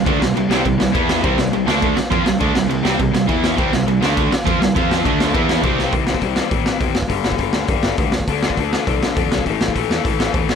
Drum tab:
CC |x---x---x---x---|x---x---x---x---|x---x---x---x---|x---x---x---x---|
HH |----------------|----------------|----------------|----------------|
SD |--o---o---o---o-|--o---o---o---o-|--o---o---o---o-|--o---o---o---o-|
BD |o-------o---o---|o-------o---o---|o-------o---o---|o-------o---o---|

CC |x---x---x---x---|----------------|----------------|----------------|
HH |----------------|o---o---o---o---|o---o---o---o---|o---o---o---o---|
SD |--o---o---o---o-|--o---o---o---o-|--o---o---o---o-|--o---o---o---o-|
BD |o---o---o---o---|o--oo---o---o--o|o--oo---o---o--o|o--oo---o---o--o|

CC |----------------|
HH |o---o---o---o---|
SD |--o---o---o---o-|
BD |o--oo---o---o---|